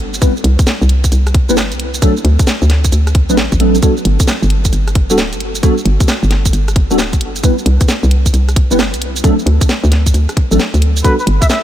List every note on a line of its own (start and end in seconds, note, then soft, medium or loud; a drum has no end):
0.00 0.20 G1 medium
0.14 closed hi-hat soft
0.14 shaker medium
0.22 0.31 G3 medium
0.22 0.31 B3 medium
0.22 0.31 C4 medium
0.22 0.31 E4 medium
0.22 0.31 B4 medium
0.22 kick loud
0.22 closed hi-hat medium
0.22 shaker medium
0.37 shaker soft
0.44 0.57 C2 loud
0.44 closed hi-hat loud
0.59 kick loud
0.59 closed hi-hat medium
0.59 shaker medium
0.67 snare loud
0.67 shaker medium
0.82 1.11 C2 loud
0.82 shaker soft
0.89 closed hi-hat medium
1.04 kick medium
1.04 closed hi-hat medium
1.04 shaker medium
1.12 1.50 C2 medium
1.12 closed hi-hat medium
1.12 shaker medium
1.27 cross-stick medium
1.27 closed hi-hat soft
1.27 shaker soft
1.34 kick loud
1.34 closed hi-hat loud
1.49 1.73 G1 loud
1.49 1.54 G3 medium
1.49 1.54 B3 medium
1.49 1.54 C4 medium
1.49 1.54 E4 medium
1.49 1.54 B4 loud
1.49 shaker medium
1.57 snare loud
1.57 shaker medium
1.72 2.01 C2 medium
1.72 closed hi-hat medium
1.72 shaker soft
1.80 closed hi-hat medium
1.94 closed hi-hat soft
1.94 shaker medium
2.02 2.12 F#3 loud
2.02 2.12 A3 medium
2.02 2.12 C4 medium
2.02 2.12 D4 medium
2.02 2.12 A4 loud
2.02 kick loud
2.02 closed hi-hat medium
2.02 shaker medium
2.17 shaker soft
2.25 2.38 D2 loud
2.25 closed hi-hat loud
2.39 kick loud
2.39 closed hi-hat medium
2.39 shaker medium
2.47 snare loud
2.47 shaker medium
2.62 2.91 D2 loud
2.62 shaker soft
2.70 snare medium
2.70 closed hi-hat medium
2.84 kick medium
2.84 closed hi-hat medium
2.84 shaker medium
2.92 3.31 D2 medium
2.92 closed hi-hat medium
2.92 shaker medium
3.07 cross-stick medium
3.07 closed hi-hat soft
3.07 shaker soft
3.15 kick loud
3.15 closed hi-hat loud
3.30 3.49 A1 loud
3.30 3.35 F#3 medium
3.30 3.35 A3 medium
3.30 3.35 C4 medium
3.30 3.35 D4 medium
3.30 3.35 B4 medium
3.30 shaker medium
3.37 snare loud
3.37 shaker medium
3.52 3.81 A1 medium
3.52 kick medium
3.52 closed hi-hat soft
3.52 shaker soft
3.60 3.75 F#3 medium
3.60 3.75 A3 medium
3.60 3.75 C4 medium
3.60 3.75 D4 medium
3.60 3.75 A4 medium
3.60 closed hi-hat medium
3.75 closed hi-hat soft
3.75 shaker medium
3.83 3.92 G3 medium
3.83 3.92 B3 medium
3.83 3.92 D4 medium
3.83 3.92 F#4 medium
3.83 3.92 A4 medium
3.83 kick loud
3.83 closed hi-hat medium
3.83 shaker medium
3.97 shaker soft
4.05 4.18 G1 loud
4.05 closed hi-hat loud
4.20 kick loud
4.20 closed hi-hat medium
4.20 shaker medium
4.28 snare loud
4.28 shaker medium
4.42 4.71 G1 loud
4.42 shaker soft
4.50 closed hi-hat medium
4.65 kick medium
4.65 closed hi-hat medium
4.65 shaker medium
4.73 5.12 G1 medium
4.73 closed hi-hat medium
4.73 shaker medium
4.88 cross-stick medium
4.88 closed hi-hat soft
4.88 shaker soft
4.95 kick loud
4.95 closed hi-hat loud
5.10 5.34 D1 loud
5.10 5.15 G3 medium
5.10 5.15 B3 medium
5.10 5.15 D4 medium
5.10 5.15 F#4 medium
5.10 5.15 A4 loud
5.10 shaker medium
5.18 snare loud
5.18 shaker medium
5.33 5.62 G1 medium
5.33 closed hi-hat medium
5.33 shaker soft
5.40 closed hi-hat medium
5.55 closed hi-hat soft
5.55 shaker medium
5.63 5.73 G3 medium
5.63 5.73 B3 medium
5.63 5.73 D4 medium
5.63 5.73 F#4 medium
5.63 5.73 A4 loud
5.63 kick loud
5.63 closed hi-hat medium
5.63 shaker medium
5.78 shaker soft
5.85 5.99 G1 loud
5.85 closed hi-hat loud
6.00 kick loud
6.00 closed hi-hat medium
6.00 shaker medium
6.08 snare loud
6.08 shaker medium
6.23 6.52 G1 loud
6.23 shaker soft
6.31 snare medium
6.31 closed hi-hat medium
6.45 kick medium
6.45 closed hi-hat medium
6.45 shaker medium
6.53 6.92 G1 medium
6.53 closed hi-hat medium
6.53 shaker medium
6.68 cross-stick medium
6.68 closed hi-hat soft
6.68 shaker soft
6.76 kick loud
6.76 closed hi-hat loud
6.90 7.15 D1 loud
6.90 6.96 G3 medium
6.90 6.96 B3 medium
6.90 6.96 D4 medium
6.90 6.96 F#4 medium
6.90 6.96 A4 loud
6.90 shaker medium
6.98 snare loud
6.98 shaker medium
7.13 7.42 G1 medium
7.13 kick medium
7.13 closed hi-hat medium
7.13 shaker soft
7.21 closed hi-hat loud
7.36 closed hi-hat soft
7.36 shaker medium
7.44 7.53 G3 medium
7.44 7.53 B3 medium
7.44 7.53 C4 medium
7.44 7.53 E4 medium
7.44 7.53 B4 medium
7.44 kick loud
7.44 closed hi-hat medium
7.44 shaker medium
7.58 shaker soft
7.66 7.79 C2 loud
7.66 closed hi-hat loud
7.81 kick loud
7.81 closed hi-hat medium
7.81 shaker medium
7.89 snare loud
7.89 shaker medium
8.03 8.32 C2 loud
8.03 shaker soft
8.11 closed hi-hat medium
8.26 kick medium
8.26 closed hi-hat medium
8.26 shaker medium
8.34 8.72 C2 medium
8.34 closed hi-hat medium
8.34 shaker medium
8.49 cross-stick medium
8.49 closed hi-hat soft
8.49 shaker soft
8.56 kick loud
8.56 closed hi-hat loud
8.71 8.95 G1 loud
8.71 8.76 G3 medium
8.71 8.76 B3 medium
8.71 8.76 C4 medium
8.71 8.76 E4 medium
8.71 8.76 B4 loud
8.71 shaker medium
8.79 snare loud
8.79 shaker medium
8.93 9.22 C2 medium
8.93 closed hi-hat medium
8.93 shaker soft
9.02 closed hi-hat loud
9.16 closed hi-hat soft
9.16 shaker medium
9.24 9.34 F#3 medium
9.24 9.34 A3 medium
9.24 9.34 C4 medium
9.24 9.34 D4 medium
9.24 9.34 A4 loud
9.24 kick loud
9.24 closed hi-hat medium
9.24 shaker medium
9.39 shaker soft
9.46 9.60 D2 loud
9.46 closed hi-hat loud
9.61 kick loud
9.61 closed hi-hat medium
9.61 shaker medium
9.69 snare loud
9.69 shaker medium
9.84 10.13 D2 loud
9.84 shaker soft
9.92 snare medium
9.92 closed hi-hat loud
10.06 kick medium
10.06 cross-stick soft
10.06 closed hi-hat medium
10.06 shaker medium
10.14 10.27 D2 medium
10.14 closed hi-hat medium
10.14 shaker medium
10.29 cross-stick medium
10.29 closed hi-hat soft
10.29 shaker soft
10.37 kick loud
10.37 closed hi-hat loud
10.51 10.58 A1 medium
10.51 10.57 F#3 medium
10.51 10.57 A3 medium
10.51 10.57 C4 medium
10.51 10.57 D4 medium
10.51 10.57 A4 medium
10.51 shaker medium
10.59 snare loud
10.59 shaker medium
10.74 11.03 D2 medium
10.74 closed hi-hat medium
10.74 shaker soft
10.82 closed hi-hat loud
10.97 closed hi-hat soft
10.97 shaker medium
11.04 11.14 G3 medium
11.04 11.14 B3 medium
11.04 11.14 D4 medium
11.04 11.14 F#4 medium
11.04 11.14 A4 medium
11.04 11.14 B4 medium
11.04 kick loud
11.04 closed hi-hat medium
11.04 shaker medium
11.19 11.24 B4 medium
11.19 shaker soft
11.27 11.40 G1 loud
11.27 closed hi-hat loud
11.41 11.47 E5 medium
11.41 kick loud
11.41 closed hi-hat medium
11.41 shaker medium
11.49 11.59 E5 medium
11.49 snare loud
11.49 shaker medium